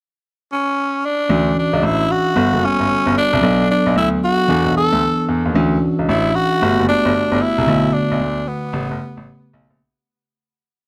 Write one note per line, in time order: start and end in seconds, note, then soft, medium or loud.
0.52 1.07 C#4 medium
1.05 1.58 D4 medium
1.29 1.49 D2 loud
1.29 2.34 E3 medium
1.29 2.34 C#4 medium
1.29 2.35 D4 medium
1.29 2.35 F#4 medium
1.59 1.87 D4 medium
1.73 1.80 C#2 medium
1.83 2.02 A1 medium
1.83 2.13 E4 medium
2.11 2.66 F#4 loud
2.35 2.48 G1 loud
2.35 3.40 G3 medium
2.35 3.40 B3 medium
2.35 3.41 F#4 medium
2.35 3.41 A4 medium
2.53 2.60 F#1 medium
2.65 3.17 C#4 loud
2.80 2.87 G1 medium
2.89 2.96 G1 soft
3.06 3.13 G1 medium
3.18 3.66 D4 loud
3.33 3.40 C2 medium
3.41 3.62 B1 loud
3.41 4.46 F#3 medium
3.41 4.46 B3 medium
3.41 4.47 D4 medium
3.41 4.47 A4 medium
3.71 3.95 D4 medium
3.86 3.93 B1 loud
3.96 4.15 D2 medium
3.96 4.09 E4 medium
4.24 4.73 F#4 loud
4.48 4.61 E2 loud
4.48 5.53 E3 medium
4.48 5.53 B3 medium
4.48 5.53 D4 medium
4.48 5.54 A4 medium
4.66 4.73 B1 medium
4.77 5.26 A4 loud
4.92 4.99 D2 medium
5.29 5.41 E2 medium
5.46 5.52 D#2 medium
5.54 5.74 D2 loud
5.54 6.59 E3 medium
5.54 6.59 C#4 medium
5.54 6.60 D4 medium
5.54 6.60 F#4 medium
5.99 6.06 C#2 medium
6.09 6.28 A1 loud
6.09 6.37 E4 loud
6.35 6.88 F#4 loud
6.61 6.74 G1 loud
6.61 7.66 A3 medium
6.61 7.66 B3 medium
6.61 7.65 F#4 medium
6.61 7.66 G4 medium
6.79 6.86 F#1 medium
6.88 7.43 D4 loud
7.05 7.12 G1 loud
7.32 7.38 G1 medium
7.42 7.95 E4 loud
7.58 7.65 C2 medium
7.67 7.87 B1 loud
7.67 8.71 D3 medium
7.67 8.72 A3 medium
7.67 8.72 B3 medium
7.67 8.72 F#4 medium
7.93 8.49 D4 medium
8.11 8.18 B1 medium
8.21 8.40 D2 medium
8.48 9.54 B3 medium
8.73 8.86 A1 loud
8.73 9.78 C#3 medium
8.73 9.78 A3 medium
8.73 9.78 B3 medium
8.73 9.79 G4 medium
8.91 8.98 G1 medium
9.17 9.24 A1 medium
9.53 9.66 B1 loud
9.70 9.77 A#1 medium